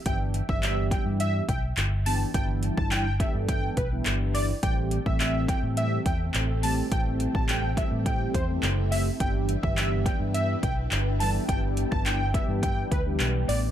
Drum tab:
HH |x-x-x-x-x-x-x-o-|x-x-x-x-x-x-x-o-|x-x-x-x-x-x-x-o-|x-x-x-x-x-x-x-o-|
CP |----x-------x---|----x-------x---|----x-------x---|----x-------x---|
BD |o--o--o---o-----|o--o--o-o-o-----|o--o--o---o-----|o--o--o-o-o-----|

HH |x-x-x-x-x-x-x-o-|x-x-x-x-x-x-x-o-|
CP |----x-------x---|----x-------x---|
BD |o--o--o---o-----|o--o--o-o-o-----|